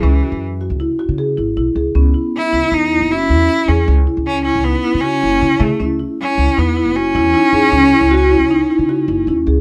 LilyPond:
<<
  \new Staff \with { instrumentName = "Marimba" } { \time 5/4 \key fis \dorian \tempo 4 = 156 cis'8 fis'4 fis'8 e'8 fis'8 gis'8 e'8 e'8 gis'8 | cis'8 e'4 e'8 dis'8 e'8 fis'8 e'8 e'8 gis'8 | cis'8 e'4 e'8 dis'8 e'8 fis'8 e'8 e'8 gis'8 | cis'8 e'4 e'8 dis'8 e'8 fis'8 e'8 e'8 gis'8 |
cis'8 e'4 e'8 dis'8 e'8 fis'8 e'8 e'8 gis'8 | }
  \new Staff \with { instrumentName = "Vibraphone" } { \time 5/4 \key fis \dorian r1 r4 | b2. cis'2~ | cis'1~ cis'4 | e'1 dis'4 |
cis'8 e'8 fis'8 e'8 dis'2 cis'4 | }
  \new Staff \with { instrumentName = "Cello" } { \time 5/4 \key fis \dorian e4 r1 | r4 e'4 dis'4 e'4. cis'8 | r4 cis'8 cis'8 b4 cis'4. a8 | r4 cis'4 b4 cis'2~ |
cis'1 r4 | }
  \new Staff \with { instrumentName = "Upright bass" } { \clef bass \time 5/4 \key fis \dorian cis,8 r16 fis,4 cis,8 r8 cis8. gis,,8 b,,8 cis,8 | cis,8 r4 cis,16 r16 e,8. fis,,8. e,8 r8 e,8 | cis,8 r16 cis,4 cis,8 r8 cis8. fis,,8 cis8 cis16 r16 | cis,8 r4 cis,16 r16 e,8. fis,,8. e,8 r8 e,8 |
cis,8 r16 cis,4 cis,8 r8 cis8. fis,,8 dis,8 cis,8 | }
>>